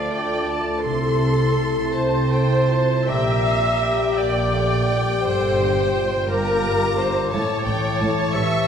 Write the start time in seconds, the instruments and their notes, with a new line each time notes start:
Already playing: double bass section D2, cello section D3, harp D3 A3 A4, bassoon F3, french horn section A3 F4, clarinet F4, violin section D5 F5, viola section D5, oboe A5, flute D6
0.11 bassoon A3, harp F4, violin section G5
0.48 bassoon A3, harp D4, violin section A5
0.84 double bass section C2, cello section C3, harp C3, clarinet E4, french horn section E4, viola section A4, violin section A4 C6, oboe A5, flute C6
1.22 harp C4
1.59 harp E4
1.95 double bass section C2, cello section C3, clarinet E4, harp A4, viola section C5, violin section C5 A5, oboe A5
2.32 harp E4, clarinet A4, violin section G5
2.70 harp C4, clarinet F4, violin section A5
3.07 double bass section A#1, cello section A#2, harp A#2, bassoon G3, french horn section A#3 G4, clarinet G4, violin section E5 G5, viola section E5, oboe A#5, flute D6
3.45 harp A#3, violin section F5
3.81 harp G4, violin section G5
4.18 double bass section A#1, cello section A#2, bassoon A#3, harp A#4, violin section D5, viola section D5, oboe G5
4.54 bassoon A3, harp G4
4.89 bassoon G3, harp D4
5.23 double bass section G1, harp G2, cello section G2, bassoon G3, clarinet A4, violin section C5, viola section C5
5.60 harp D3, clarinet G4
5.95 clarinet F4, harp G4
6.28 double bass section G1, cello section G2, bassoon A#3, violin section A#4 A#5, viola section A#4, harp A#4, flute D6
6.65 harp G4
6.98 harp D4, violin section C5, viola section C5
7.31 double bass section A1, harp A2, cello section A2, bassoon A3, clarinet E4, violin section C#5 A5, viola section C#5, oboe A5
7.65 double bass section A1, cello section A2, harp E3, violin section G5
8.00 double bass section A1, cello section A2, french horn section A3 E4, violin section A5
8.34 double bass section A1, cello section A2, bassoon E3, clarinet G4, harp A4, violin section E5 C#6, viola section E5, oboe A5, flute C#6